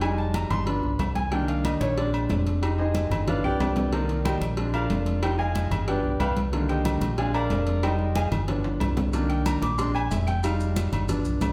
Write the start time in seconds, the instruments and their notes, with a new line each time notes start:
Already playing: fingered electric bass F1
0.01 upright piano G3 G#3 D#4 G#5, cowbell, high conga, low agogo
0.18 upright piano A5, high conga
0.34 upright piano A#5, cowbell, high conga, low timbale, low agogo
0.50 fingered electric bass G1, upright piano C6, cowbell, high conga, low conga, low agogo
0.66 upright piano F3 B3 D4 B5, cowbell, high conga
0.83 fingered electric bass B1, high conga
0.99 fingered electric bass C2, cowbell, high conga, low timbale, low agogo
1.15 upright piano G#5, cowbell, high conga
1.31 upright piano D#3 A#3 D4 G5, cowbell, high conga
1.48 upright piano F5, cowbell, high conga
1.64 upright piano D#5, cowbell, high conga, low timbale, low agogo
1.80 fingered electric bass A#1, upright piano C#5, cowbell, high conga, low agogo
1.96 upright piano G#3 C4 D4 D5, cowbell, high conga
2.14 high conga, low agogo
2.29 fingered electric bass F1, cowbell, high conga, low timbale, low agogo
2.46 cowbell, high conga
2.62 upright piano G#3 D#4 G4, cowbell, high conga, low agogo
2.78 upright piano D#4 G#4 C5 D#5, high conga
2.95 cowbell, high conga, low timbale, low agogo
3.10 fingered electric bass G1, cowbell, high conga, low conga, low agogo
3.27 upright piano F3 B3 D4 F4 B4 D5 F5, cowbell, high conga, low conga, high timbale
3.43 fingered electric bass B1, upright piano G4 B4 D5 G5, high conga, low timbale
3.59 fingered electric bass C2, cowbell, high conga, low timbale, low agogo
3.76 cowbell, high conga, low timbale
3.92 upright piano D#3 A#3 D#4 A#4 C5 D5 D#5, cowbell, high conga
4.09 cowbell, high conga
4.25 upright piano G4 C5 D#5 G5, cowbell, high conga, low timbale, low agogo
4.41 fingered electric bass A#1, cowbell, high conga, low agogo
4.57 upright piano G#3 C4 D4, cowbell, high conga
4.74 upright piano F4 A#4 D5 F5, high conga, low agogo
4.90 fingered electric bass F1, cowbell, high conga, low timbale, low agogo
5.06 cowbell, high conga
5.22 upright piano F3 G#3 D#4 G4 C5 D#5 G5, cowbell, high conga, low agogo
5.39 upright piano G#4 D#5 F5 G#5, high conga
5.55 cowbell, high conga, low timbale, low agogo
5.70 fingered electric bass G1, cowbell, high conga, low conga, low agogo
5.87 upright piano F3 B3 D4 G4 B4 D5 G5, cowbell, high conga
6.03 fingered electric bass B1, high conga
6.20 fingered electric bass C2, upright piano B4 F5 G5 B5, cowbell, high conga, low timbale, low agogo
6.37 cowbell, high conga
6.52 upright piano D3 D#3 A#3, cowbell, high conga
6.69 upright piano G4 C5 D#5 G5, cowbell, high conga
6.85 cowbell, high conga, low timbale, low agogo
7.01 fingered electric bass A#1, cowbell, high conga, low agogo
7.18 upright piano G#3 C4 D4 G#4 D5 F5 G#5, cowbell, high conga
7.34 upright piano A#4 D5 F5 A#5, high conga, low agogo
7.50 fingered electric bass F1, cowbell, high conga, low timbale, low agogo
7.67 cowbell, high conga
7.83 upright piano G3 G#3 D#4 G4 C5 D#5 G5, cowbell, high conga, low agogo
7.99 high conga
8.15 upright piano G#4 D#5 F5 G#5, cowbell, high bongo, high conga, low timbale, low agogo
8.31 fingered electric bass G1, cowbell, high bongo, high conga, low conga, low agogo
8.47 upright piano F3 B3 D4, cowbell, high bongo, high conga, high timbale
8.64 high conga, high timbale
8.80 fingered electric bass C2, cowbell, low bongo, high conga, low timbale, low agogo
8.97 cowbell, low bongo, high conga, low timbale
9.13 upright piano D#3 A#3 D4, cowbell, high conga, maracas
9.29 upright piano G5, cowbell, high conga
9.46 upright piano A#5, cowbell, high conga, low timbale, low agogo, maracas
9.62 fingered electric bass A#1, upright piano D6, cowbell, high conga, low agogo, maracas
9.78 upright piano G#3 C4 D4 C6, cowbell, high conga, maracas
9.95 upright piano G#5, high conga, low agogo
10.11 fingered electric bass F1, upright piano E5, cowbell, high conga, low timbale, low agogo, maracas
10.27 upright piano G5, cowbell, high conga, maracas
10.43 upright piano G3 G#3 D#4 F5, cowbell, high conga, low agogo, maracas
10.60 high conga, maracas
10.76 cowbell, high conga, low timbale, low agogo, maracas
10.92 fingered electric bass G1, cowbell, high conga, low conga, low agogo, maracas
11.08 upright piano F3 B3 D4, cowbell, high conga, low conga, maracas
11.25 fingered electric bass B1, high conga, maracas
11.41 fingered electric bass C2, cowbell, high conga, low timbale, low agogo, maracas